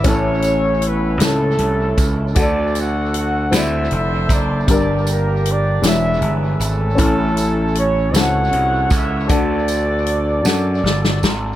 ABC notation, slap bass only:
X:1
M:6/8
L:1/8
Q:3/8=52
K:D
V:1 name="Slap bass" clef=bass
A,,,3 C,, =C,, ^C,, | D,,3 D,, =F,,, ^F,,, | G,,,3 E,,, G,,, ^G,,, | A,,,3 C,, =C,, ^C,, |
D,,3 F,, G,,, ^G,,, |]